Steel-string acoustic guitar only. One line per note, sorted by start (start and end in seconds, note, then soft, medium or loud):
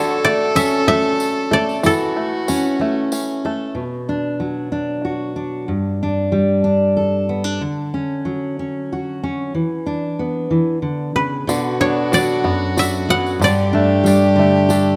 0.00 0.49 D3 medium
0.00 1.83 F#4 medium
0.00 1.51 A4 medium
0.55 1.80 C#4 medium
0.88 1.45 F#3 medium
1.51 1.80 A4 medium
1.83 2.41 F#2 medium
1.83 3.72 E4 medium
2.49 3.73 C#4 medium
2.79 3.38 F#3 medium
3.45 3.73 A4 medium
3.75 5.68 B2 soft
4.09 4.71 D4 soft
4.40 5.69 F#3 soft
4.72 5.36 D4 soft
5.05 5.65 F#4 medium
5.36 6.02 D4 soft
5.68 7.58 G2 medium
6.03 6.64 D4 soft
6.32 7.58 G3 medium
6.64 7.29 D4 medium
6.97 7.58 A4 medium
7.29 7.44 B3 soft
7.44 7.61 D4 soft
7.61 9.51 D3 medium
7.94 8.58 C#4 soft
8.25 9.55 F#3 medium
8.59 9.22 C#4 soft
8.93 9.52 F#4 soft
9.23 9.52 C#4 medium
9.55 10.49 E3 medium
9.86 11.44 D4 soft
10.19 11.44 B3 medium
10.51 10.82 E3 soft
10.82 11.15 D3 soft
11.16 11.47 C#3 medium
11.47 12.44 B2 medium
11.81 13.73 D4 medium
12.13 13.07 F#3 medium
12.44 13.39 F#2 medium
12.77 13.38 F#4 medium
13.09 13.41 F#3 medium
13.39 14.96 G2 medium
13.73 14.96 D4 medium
14.04 14.96 G3 medium
14.36 14.96 D3 medium
14.69 14.96 A4 medium